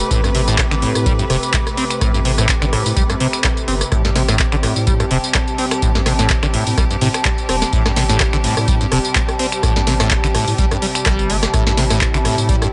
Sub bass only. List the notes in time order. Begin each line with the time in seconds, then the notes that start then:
0.11 A1
0.71 A1
0.95 A2
1.30 E1
2.01 A1
2.62 A1
2.86 A2
2.96 C2
3.68 G1
3.92 A1
4.52 A1
4.76 A2
5.11 E1
5.82 A1
6.43 A1
6.67 A2
6.77 C2
7.01 A2
7.49 E1
7.73 A1
8.33 A1
8.57 A2
8.92 E1
9.63 A1
10.24 A1
10.48 A2
10.58 C2
11.06 G1
11.54 A1
12.14 A1
12.38 A2